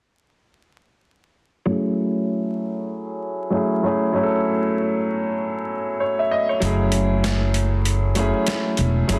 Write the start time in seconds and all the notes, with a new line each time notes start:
1.66 F#3 A3 C#4 E4
1.70 G#4
3.50 F#3 A3 C#4 E4
3.54 G#4
3.83 F#3 A3 C#4 E4
3.87 G#4
4.13 F#3 A3 C#4 E4
4.17 G#4
4.23 A4
6.00 C#5
6.19 E5
6.31 D#5
6.49 C#5
6.60 F#1 F#3 A3 C#4 E4, closed hi-hat
6.64 G#4
6.92 closed hi-hat
7.24 snare, closed hi-hat
7.54 closed hi-hat
7.85 closed hi-hat
8.15 F#3 A3 C#4 E4, closed hi-hat
8.19 G#4
8.46 snare, closed hi-hat
8.77 E1, closed hi-hat
9.08 F#1 F#3 A3 C#4 E4, closed hi-hat
9.12 G#4